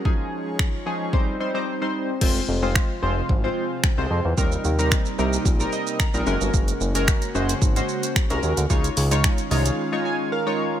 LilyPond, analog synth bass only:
\new Staff \with { instrumentName = "Analog synth bass" } { \clef bass \time 4/4 \key f \minor \tempo 4 = 111 r1 | f,,8 f,,8. r16 f,,8 aes,,8 r8. c,16 f,16 e,16 | ees,8 ees,8. r16 c,8 bes,,8 r8. bes,,16 ges,,16 g,,16 | ges,,8 ges,,8. r16 ges,,8 aes,,8 r8. c,16 ees,16 d,16 |
des,8 des,8. r16 c,8 r2 | }